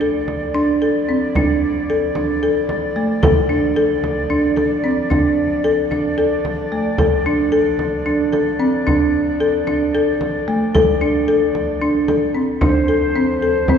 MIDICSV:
0, 0, Header, 1, 4, 480
1, 0, Start_track
1, 0, Key_signature, -1, "minor"
1, 0, Tempo, 536673
1, 1204, Time_signature, 7, 3, 24, 8
1, 12327, End_track
2, 0, Start_track
2, 0, Title_t, "Marimba"
2, 0, Program_c, 0, 12
2, 8, Note_on_c, 0, 69, 76
2, 388, Note_off_c, 0, 69, 0
2, 488, Note_on_c, 0, 62, 80
2, 677, Note_off_c, 0, 62, 0
2, 732, Note_on_c, 0, 69, 66
2, 919, Note_off_c, 0, 69, 0
2, 972, Note_on_c, 0, 60, 74
2, 1159, Note_off_c, 0, 60, 0
2, 1217, Note_on_c, 0, 62, 77
2, 1594, Note_off_c, 0, 62, 0
2, 1698, Note_on_c, 0, 69, 73
2, 1883, Note_off_c, 0, 69, 0
2, 1931, Note_on_c, 0, 62, 65
2, 2119, Note_off_c, 0, 62, 0
2, 2172, Note_on_c, 0, 69, 76
2, 2551, Note_off_c, 0, 69, 0
2, 2648, Note_on_c, 0, 57, 77
2, 2837, Note_off_c, 0, 57, 0
2, 2888, Note_on_c, 0, 69, 82
2, 3078, Note_off_c, 0, 69, 0
2, 3124, Note_on_c, 0, 62, 73
2, 3316, Note_off_c, 0, 62, 0
2, 3367, Note_on_c, 0, 69, 82
2, 3748, Note_off_c, 0, 69, 0
2, 3846, Note_on_c, 0, 62, 80
2, 4037, Note_off_c, 0, 62, 0
2, 4083, Note_on_c, 0, 69, 58
2, 4275, Note_off_c, 0, 69, 0
2, 4327, Note_on_c, 0, 60, 70
2, 4517, Note_off_c, 0, 60, 0
2, 4564, Note_on_c, 0, 62, 77
2, 4947, Note_off_c, 0, 62, 0
2, 5047, Note_on_c, 0, 69, 81
2, 5238, Note_off_c, 0, 69, 0
2, 5287, Note_on_c, 0, 62, 63
2, 5478, Note_off_c, 0, 62, 0
2, 5526, Note_on_c, 0, 69, 81
2, 5908, Note_off_c, 0, 69, 0
2, 6010, Note_on_c, 0, 57, 64
2, 6200, Note_off_c, 0, 57, 0
2, 6249, Note_on_c, 0, 69, 79
2, 6439, Note_off_c, 0, 69, 0
2, 6494, Note_on_c, 0, 62, 76
2, 6682, Note_off_c, 0, 62, 0
2, 6727, Note_on_c, 0, 69, 79
2, 7108, Note_off_c, 0, 69, 0
2, 7208, Note_on_c, 0, 62, 75
2, 7398, Note_off_c, 0, 62, 0
2, 7447, Note_on_c, 0, 69, 63
2, 7638, Note_off_c, 0, 69, 0
2, 7688, Note_on_c, 0, 60, 79
2, 7878, Note_off_c, 0, 60, 0
2, 7931, Note_on_c, 0, 62, 83
2, 8311, Note_off_c, 0, 62, 0
2, 8411, Note_on_c, 0, 69, 77
2, 8600, Note_off_c, 0, 69, 0
2, 8650, Note_on_c, 0, 62, 74
2, 8839, Note_off_c, 0, 62, 0
2, 8896, Note_on_c, 0, 69, 83
2, 9274, Note_off_c, 0, 69, 0
2, 9373, Note_on_c, 0, 57, 78
2, 9561, Note_off_c, 0, 57, 0
2, 9612, Note_on_c, 0, 69, 89
2, 9800, Note_off_c, 0, 69, 0
2, 9850, Note_on_c, 0, 62, 75
2, 10039, Note_off_c, 0, 62, 0
2, 10090, Note_on_c, 0, 69, 79
2, 10470, Note_off_c, 0, 69, 0
2, 10568, Note_on_c, 0, 62, 78
2, 10758, Note_off_c, 0, 62, 0
2, 10807, Note_on_c, 0, 69, 65
2, 10997, Note_off_c, 0, 69, 0
2, 11042, Note_on_c, 0, 60, 64
2, 11234, Note_off_c, 0, 60, 0
2, 11280, Note_on_c, 0, 62, 75
2, 11473, Note_off_c, 0, 62, 0
2, 11522, Note_on_c, 0, 69, 75
2, 11714, Note_off_c, 0, 69, 0
2, 11766, Note_on_c, 0, 60, 80
2, 11956, Note_off_c, 0, 60, 0
2, 12007, Note_on_c, 0, 69, 69
2, 12196, Note_off_c, 0, 69, 0
2, 12247, Note_on_c, 0, 60, 80
2, 12327, Note_off_c, 0, 60, 0
2, 12327, End_track
3, 0, Start_track
3, 0, Title_t, "Woodwind section"
3, 0, Program_c, 1, 71
3, 0, Note_on_c, 1, 53, 63
3, 0, Note_on_c, 1, 64, 57
3, 0, Note_on_c, 1, 74, 68
3, 4411, Note_off_c, 1, 64, 0
3, 4563, Note_on_c, 1, 62, 57
3, 11129, Note_off_c, 1, 53, 0
3, 11129, Note_off_c, 1, 62, 0
3, 11129, Note_off_c, 1, 74, 0
3, 11281, Note_on_c, 1, 72, 75
3, 11284, Note_on_c, 1, 62, 62
3, 11288, Note_on_c, 1, 53, 69
3, 12327, Note_off_c, 1, 53, 0
3, 12327, Note_off_c, 1, 62, 0
3, 12327, Note_off_c, 1, 72, 0
3, 12327, End_track
4, 0, Start_track
4, 0, Title_t, "Frame drum"
4, 7, Note_on_c, 9, 64, 17
4, 96, Note_off_c, 9, 64, 0
4, 250, Note_on_c, 9, 64, 42
4, 339, Note_off_c, 9, 64, 0
4, 977, Note_on_c, 9, 64, 19
4, 1066, Note_off_c, 9, 64, 0
4, 1211, Note_on_c, 9, 64, 59
4, 1301, Note_off_c, 9, 64, 0
4, 1684, Note_on_c, 9, 64, 21
4, 1773, Note_off_c, 9, 64, 0
4, 1926, Note_on_c, 9, 64, 46
4, 2015, Note_off_c, 9, 64, 0
4, 2407, Note_on_c, 9, 64, 51
4, 2496, Note_off_c, 9, 64, 0
4, 2649, Note_on_c, 9, 64, 23
4, 2738, Note_off_c, 9, 64, 0
4, 2890, Note_on_c, 9, 64, 73
4, 2979, Note_off_c, 9, 64, 0
4, 3611, Note_on_c, 9, 64, 49
4, 3700, Note_off_c, 9, 64, 0
4, 3850, Note_on_c, 9, 64, 18
4, 3939, Note_off_c, 9, 64, 0
4, 4090, Note_on_c, 9, 64, 45
4, 4179, Note_off_c, 9, 64, 0
4, 4337, Note_on_c, 9, 64, 19
4, 4427, Note_off_c, 9, 64, 0
4, 4571, Note_on_c, 9, 64, 54
4, 4660, Note_off_c, 9, 64, 0
4, 5053, Note_on_c, 9, 64, 17
4, 5142, Note_off_c, 9, 64, 0
4, 5293, Note_on_c, 9, 64, 45
4, 5382, Note_off_c, 9, 64, 0
4, 5768, Note_on_c, 9, 64, 47
4, 5858, Note_off_c, 9, 64, 0
4, 6010, Note_on_c, 9, 64, 20
4, 6099, Note_off_c, 9, 64, 0
4, 6246, Note_on_c, 9, 64, 63
4, 6335, Note_off_c, 9, 64, 0
4, 6726, Note_on_c, 9, 64, 20
4, 6815, Note_off_c, 9, 64, 0
4, 6968, Note_on_c, 9, 64, 42
4, 7058, Note_off_c, 9, 64, 0
4, 7453, Note_on_c, 9, 64, 44
4, 7543, Note_off_c, 9, 64, 0
4, 7693, Note_on_c, 9, 64, 20
4, 7783, Note_off_c, 9, 64, 0
4, 7939, Note_on_c, 9, 64, 53
4, 8028, Note_off_c, 9, 64, 0
4, 8413, Note_on_c, 9, 64, 19
4, 8502, Note_off_c, 9, 64, 0
4, 8653, Note_on_c, 9, 64, 45
4, 8742, Note_off_c, 9, 64, 0
4, 9130, Note_on_c, 9, 64, 49
4, 9220, Note_off_c, 9, 64, 0
4, 9374, Note_on_c, 9, 64, 22
4, 9463, Note_off_c, 9, 64, 0
4, 9617, Note_on_c, 9, 64, 60
4, 9706, Note_off_c, 9, 64, 0
4, 10330, Note_on_c, 9, 64, 48
4, 10420, Note_off_c, 9, 64, 0
4, 10808, Note_on_c, 9, 64, 50
4, 10897, Note_off_c, 9, 64, 0
4, 11050, Note_on_c, 9, 64, 22
4, 11139, Note_off_c, 9, 64, 0
4, 11283, Note_on_c, 9, 64, 67
4, 11372, Note_off_c, 9, 64, 0
4, 12235, Note_on_c, 9, 64, 59
4, 12325, Note_off_c, 9, 64, 0
4, 12327, End_track
0, 0, End_of_file